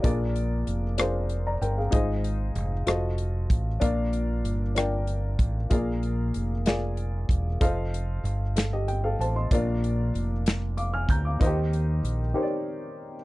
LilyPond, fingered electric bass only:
\new Staff \with { instrumentName = "Fingered electric bass" } { \clef bass \time 6/8 \key bes \mixolydian \tempo 4. = 63 bes,,4 f,,4. g,,8 | aes,,4 f,,8 f,,4 a,,8 | bes,,4 g,,4. a,,8 | bes,,4 f,,4. fes,,8 |
f,,4 g,,4. a,,8 | bes,,4 f,,4. d,8 | ees,4 bes,,8 r4. | }